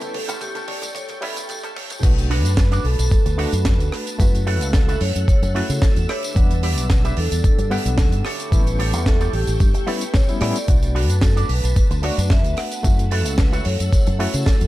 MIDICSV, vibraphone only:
0, 0, Header, 1, 2, 480
1, 0, Start_track
1, 0, Key_signature, 2, "minor"
1, 0, Tempo, 540541
1, 1807, Time_signature, 4, 2, 24, 8
1, 13028, End_track
2, 0, Start_track
2, 0, Title_t, "Vibraphone"
2, 0, Program_c, 0, 11
2, 0, Note_on_c, 0, 71, 96
2, 121, Note_on_c, 0, 69, 89
2, 133, Note_off_c, 0, 71, 0
2, 347, Note_off_c, 0, 69, 0
2, 364, Note_on_c, 0, 67, 90
2, 588, Note_off_c, 0, 67, 0
2, 606, Note_on_c, 0, 74, 92
2, 847, Note_on_c, 0, 73, 98
2, 854, Note_off_c, 0, 74, 0
2, 1070, Note_off_c, 0, 73, 0
2, 1088, Note_on_c, 0, 69, 86
2, 1311, Note_off_c, 0, 69, 0
2, 1327, Note_on_c, 0, 67, 82
2, 1329, Note_on_c, 0, 69, 101
2, 1435, Note_off_c, 0, 67, 0
2, 1437, Note_off_c, 0, 69, 0
2, 1564, Note_on_c, 0, 73, 105
2, 1672, Note_off_c, 0, 73, 0
2, 1810, Note_on_c, 0, 71, 104
2, 2525, Note_on_c, 0, 69, 89
2, 2550, Note_off_c, 0, 71, 0
2, 2751, Note_off_c, 0, 69, 0
2, 2761, Note_on_c, 0, 69, 77
2, 3449, Note_off_c, 0, 69, 0
2, 3730, Note_on_c, 0, 71, 100
2, 4210, Note_on_c, 0, 69, 96
2, 4223, Note_off_c, 0, 71, 0
2, 4452, Note_on_c, 0, 73, 111
2, 4456, Note_off_c, 0, 69, 0
2, 4680, Note_off_c, 0, 73, 0
2, 4691, Note_on_c, 0, 73, 108
2, 5173, Note_on_c, 0, 69, 97
2, 5183, Note_off_c, 0, 73, 0
2, 5415, Note_on_c, 0, 73, 101
2, 5417, Note_off_c, 0, 69, 0
2, 5651, Note_on_c, 0, 71, 97
2, 5658, Note_off_c, 0, 73, 0
2, 6373, Note_on_c, 0, 69, 85
2, 6391, Note_off_c, 0, 71, 0
2, 6603, Note_off_c, 0, 69, 0
2, 6614, Note_on_c, 0, 69, 79
2, 7295, Note_off_c, 0, 69, 0
2, 7569, Note_on_c, 0, 71, 99
2, 8046, Note_on_c, 0, 69, 93
2, 8063, Note_off_c, 0, 71, 0
2, 8286, Note_on_c, 0, 67, 99
2, 8294, Note_off_c, 0, 69, 0
2, 8767, Note_on_c, 0, 71, 94
2, 8781, Note_off_c, 0, 67, 0
2, 9005, Note_on_c, 0, 73, 104
2, 9014, Note_off_c, 0, 71, 0
2, 9113, Note_off_c, 0, 73, 0
2, 9244, Note_on_c, 0, 74, 109
2, 9721, Note_on_c, 0, 66, 92
2, 9740, Note_off_c, 0, 74, 0
2, 9961, Note_on_c, 0, 69, 97
2, 9971, Note_off_c, 0, 66, 0
2, 10070, Note_off_c, 0, 69, 0
2, 10207, Note_on_c, 0, 71, 104
2, 10653, Note_off_c, 0, 71, 0
2, 10682, Note_on_c, 0, 74, 106
2, 10920, Note_on_c, 0, 76, 110
2, 10932, Note_off_c, 0, 74, 0
2, 11160, Note_on_c, 0, 78, 115
2, 11171, Note_off_c, 0, 76, 0
2, 11610, Note_off_c, 0, 78, 0
2, 11640, Note_on_c, 0, 69, 95
2, 11867, Note_off_c, 0, 69, 0
2, 11878, Note_on_c, 0, 71, 105
2, 11988, Note_off_c, 0, 71, 0
2, 12119, Note_on_c, 0, 73, 110
2, 12836, Note_on_c, 0, 69, 98
2, 12865, Note_off_c, 0, 73, 0
2, 13028, Note_off_c, 0, 69, 0
2, 13028, End_track
0, 0, End_of_file